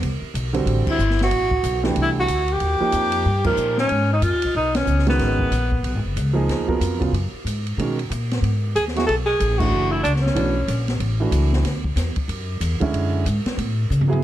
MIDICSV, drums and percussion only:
0, 0, Header, 1, 2, 480
1, 0, Start_track
1, 0, Tempo, 322754
1, 33, Time_signature, 4, 2, 24, 8
1, 21172, End_track
2, 0, Start_track
2, 0, Title_t, "Drums"
2, 40, Note_on_c, 9, 51, 64
2, 189, Note_off_c, 9, 51, 0
2, 521, Note_on_c, 9, 44, 56
2, 521, Note_on_c, 9, 51, 76
2, 670, Note_off_c, 9, 44, 0
2, 670, Note_off_c, 9, 51, 0
2, 807, Note_on_c, 9, 51, 50
2, 956, Note_off_c, 9, 51, 0
2, 996, Note_on_c, 9, 51, 62
2, 1145, Note_off_c, 9, 51, 0
2, 1292, Note_on_c, 9, 36, 85
2, 1292, Note_on_c, 9, 49, 81
2, 1441, Note_off_c, 9, 36, 0
2, 1441, Note_off_c, 9, 49, 0
2, 1469, Note_on_c, 9, 44, 53
2, 1618, Note_off_c, 9, 44, 0
2, 1639, Note_on_c, 9, 38, 28
2, 1769, Note_on_c, 9, 51, 48
2, 1788, Note_off_c, 9, 38, 0
2, 1800, Note_on_c, 9, 38, 48
2, 1917, Note_off_c, 9, 51, 0
2, 1947, Note_on_c, 9, 51, 66
2, 1948, Note_off_c, 9, 38, 0
2, 2096, Note_off_c, 9, 51, 0
2, 2250, Note_on_c, 9, 36, 51
2, 2398, Note_off_c, 9, 36, 0
2, 2433, Note_on_c, 9, 44, 63
2, 2433, Note_on_c, 9, 51, 74
2, 2581, Note_off_c, 9, 44, 0
2, 2581, Note_off_c, 9, 51, 0
2, 2729, Note_on_c, 9, 38, 56
2, 2878, Note_off_c, 9, 38, 0
2, 2910, Note_on_c, 9, 51, 62
2, 3058, Note_off_c, 9, 51, 0
2, 3393, Note_on_c, 9, 44, 69
2, 3393, Note_on_c, 9, 51, 71
2, 3542, Note_off_c, 9, 44, 0
2, 3542, Note_off_c, 9, 51, 0
2, 3686, Note_on_c, 9, 51, 48
2, 3834, Note_off_c, 9, 51, 0
2, 3867, Note_on_c, 9, 51, 62
2, 4016, Note_off_c, 9, 51, 0
2, 4345, Note_on_c, 9, 44, 66
2, 4345, Note_on_c, 9, 51, 74
2, 4494, Note_off_c, 9, 44, 0
2, 4494, Note_off_c, 9, 51, 0
2, 4637, Note_on_c, 9, 51, 75
2, 4786, Note_off_c, 9, 51, 0
2, 5121, Note_on_c, 9, 49, 78
2, 5130, Note_on_c, 9, 36, 80
2, 5270, Note_off_c, 9, 49, 0
2, 5279, Note_off_c, 9, 36, 0
2, 5304, Note_on_c, 9, 44, 66
2, 5453, Note_off_c, 9, 44, 0
2, 5615, Note_on_c, 9, 38, 58
2, 5763, Note_off_c, 9, 38, 0
2, 5785, Note_on_c, 9, 51, 59
2, 5933, Note_off_c, 9, 51, 0
2, 6276, Note_on_c, 9, 44, 65
2, 6276, Note_on_c, 9, 51, 69
2, 6424, Note_off_c, 9, 44, 0
2, 6424, Note_off_c, 9, 51, 0
2, 6572, Note_on_c, 9, 51, 70
2, 6721, Note_off_c, 9, 51, 0
2, 7057, Note_on_c, 9, 51, 66
2, 7063, Note_on_c, 9, 38, 82
2, 7206, Note_off_c, 9, 51, 0
2, 7212, Note_off_c, 9, 38, 0
2, 7235, Note_on_c, 9, 44, 54
2, 7384, Note_off_c, 9, 44, 0
2, 7414, Note_on_c, 9, 38, 27
2, 7533, Note_on_c, 9, 51, 44
2, 7562, Note_off_c, 9, 38, 0
2, 7569, Note_on_c, 9, 38, 41
2, 7682, Note_off_c, 9, 51, 0
2, 7718, Note_off_c, 9, 38, 0
2, 7721, Note_on_c, 9, 51, 61
2, 7727, Note_on_c, 9, 38, 35
2, 7870, Note_off_c, 9, 51, 0
2, 7876, Note_off_c, 9, 38, 0
2, 8021, Note_on_c, 9, 36, 50
2, 8169, Note_off_c, 9, 36, 0
2, 8205, Note_on_c, 9, 44, 50
2, 8205, Note_on_c, 9, 51, 63
2, 8354, Note_off_c, 9, 44, 0
2, 8354, Note_off_c, 9, 51, 0
2, 8503, Note_on_c, 9, 36, 46
2, 8652, Note_off_c, 9, 36, 0
2, 8686, Note_on_c, 9, 51, 60
2, 8835, Note_off_c, 9, 51, 0
2, 9171, Note_on_c, 9, 44, 60
2, 9171, Note_on_c, 9, 51, 68
2, 9320, Note_off_c, 9, 44, 0
2, 9320, Note_off_c, 9, 51, 0
2, 9654, Note_on_c, 9, 51, 60
2, 9660, Note_on_c, 9, 38, 37
2, 9803, Note_off_c, 9, 51, 0
2, 9809, Note_off_c, 9, 38, 0
2, 9948, Note_on_c, 9, 36, 56
2, 10096, Note_off_c, 9, 36, 0
2, 10130, Note_on_c, 9, 44, 58
2, 10130, Note_on_c, 9, 51, 66
2, 10279, Note_off_c, 9, 44, 0
2, 10279, Note_off_c, 9, 51, 0
2, 10431, Note_on_c, 9, 36, 58
2, 10434, Note_on_c, 9, 51, 48
2, 10580, Note_off_c, 9, 36, 0
2, 10582, Note_off_c, 9, 51, 0
2, 10622, Note_on_c, 9, 51, 57
2, 10771, Note_off_c, 9, 51, 0
2, 11103, Note_on_c, 9, 44, 56
2, 11103, Note_on_c, 9, 51, 66
2, 11251, Note_off_c, 9, 44, 0
2, 11251, Note_off_c, 9, 51, 0
2, 11400, Note_on_c, 9, 51, 48
2, 11548, Note_off_c, 9, 51, 0
2, 11590, Note_on_c, 9, 51, 61
2, 11739, Note_off_c, 9, 51, 0
2, 11883, Note_on_c, 9, 51, 44
2, 12032, Note_off_c, 9, 51, 0
2, 12067, Note_on_c, 9, 44, 62
2, 12067, Note_on_c, 9, 51, 73
2, 12216, Note_off_c, 9, 44, 0
2, 12216, Note_off_c, 9, 51, 0
2, 12364, Note_on_c, 9, 51, 46
2, 12370, Note_on_c, 9, 38, 56
2, 12513, Note_off_c, 9, 51, 0
2, 12519, Note_off_c, 9, 38, 0
2, 12546, Note_on_c, 9, 51, 57
2, 12695, Note_off_c, 9, 51, 0
2, 13024, Note_on_c, 9, 44, 54
2, 13024, Note_on_c, 9, 51, 68
2, 13173, Note_off_c, 9, 44, 0
2, 13173, Note_off_c, 9, 51, 0
2, 13202, Note_on_c, 9, 38, 27
2, 13330, Note_on_c, 9, 51, 44
2, 13350, Note_off_c, 9, 38, 0
2, 13361, Note_on_c, 9, 38, 46
2, 13479, Note_off_c, 9, 51, 0
2, 13509, Note_off_c, 9, 38, 0
2, 13514, Note_on_c, 9, 51, 63
2, 13663, Note_off_c, 9, 51, 0
2, 13984, Note_on_c, 9, 44, 50
2, 13984, Note_on_c, 9, 51, 72
2, 14132, Note_off_c, 9, 44, 0
2, 14132, Note_off_c, 9, 51, 0
2, 14279, Note_on_c, 9, 36, 89
2, 14280, Note_on_c, 9, 49, 84
2, 14428, Note_off_c, 9, 36, 0
2, 14428, Note_off_c, 9, 49, 0
2, 14942, Note_on_c, 9, 44, 59
2, 14942, Note_on_c, 9, 51, 70
2, 15091, Note_off_c, 9, 44, 0
2, 15091, Note_off_c, 9, 51, 0
2, 15108, Note_on_c, 9, 38, 29
2, 15257, Note_off_c, 9, 38, 0
2, 15262, Note_on_c, 9, 38, 44
2, 15411, Note_off_c, 9, 38, 0
2, 15411, Note_on_c, 9, 51, 64
2, 15560, Note_off_c, 9, 51, 0
2, 15886, Note_on_c, 9, 44, 54
2, 15886, Note_on_c, 9, 51, 73
2, 16035, Note_off_c, 9, 44, 0
2, 16035, Note_off_c, 9, 51, 0
2, 16180, Note_on_c, 9, 51, 51
2, 16186, Note_on_c, 9, 38, 46
2, 16328, Note_off_c, 9, 51, 0
2, 16334, Note_off_c, 9, 38, 0
2, 16362, Note_on_c, 9, 51, 62
2, 16510, Note_off_c, 9, 51, 0
2, 16836, Note_on_c, 9, 44, 64
2, 16836, Note_on_c, 9, 51, 80
2, 16984, Note_off_c, 9, 44, 0
2, 16984, Note_off_c, 9, 51, 0
2, 17145, Note_on_c, 9, 38, 46
2, 17293, Note_off_c, 9, 38, 0
2, 17320, Note_on_c, 9, 51, 66
2, 17326, Note_on_c, 9, 38, 41
2, 17469, Note_off_c, 9, 51, 0
2, 17474, Note_off_c, 9, 38, 0
2, 17615, Note_on_c, 9, 36, 59
2, 17763, Note_off_c, 9, 36, 0
2, 17797, Note_on_c, 9, 44, 66
2, 17797, Note_on_c, 9, 51, 69
2, 17803, Note_on_c, 9, 38, 38
2, 17946, Note_off_c, 9, 44, 0
2, 17946, Note_off_c, 9, 51, 0
2, 17952, Note_off_c, 9, 38, 0
2, 18082, Note_on_c, 9, 51, 52
2, 18095, Note_on_c, 9, 36, 61
2, 18231, Note_off_c, 9, 51, 0
2, 18244, Note_off_c, 9, 36, 0
2, 18278, Note_on_c, 9, 51, 65
2, 18427, Note_off_c, 9, 51, 0
2, 18753, Note_on_c, 9, 44, 61
2, 18753, Note_on_c, 9, 51, 74
2, 18901, Note_off_c, 9, 44, 0
2, 18901, Note_off_c, 9, 51, 0
2, 19052, Note_on_c, 9, 51, 48
2, 19057, Note_on_c, 9, 36, 51
2, 19201, Note_off_c, 9, 51, 0
2, 19206, Note_off_c, 9, 36, 0
2, 19244, Note_on_c, 9, 51, 65
2, 19392, Note_off_c, 9, 51, 0
2, 19721, Note_on_c, 9, 44, 66
2, 19721, Note_on_c, 9, 51, 74
2, 19870, Note_off_c, 9, 44, 0
2, 19870, Note_off_c, 9, 51, 0
2, 20016, Note_on_c, 9, 51, 49
2, 20022, Note_on_c, 9, 38, 61
2, 20165, Note_off_c, 9, 51, 0
2, 20171, Note_off_c, 9, 38, 0
2, 20203, Note_on_c, 9, 51, 63
2, 20351, Note_off_c, 9, 51, 0
2, 20688, Note_on_c, 9, 44, 54
2, 20837, Note_off_c, 9, 44, 0
2, 20837, Note_on_c, 9, 43, 64
2, 20985, Note_off_c, 9, 43, 0
2, 21005, Note_on_c, 9, 43, 87
2, 21153, Note_off_c, 9, 43, 0
2, 21172, End_track
0, 0, End_of_file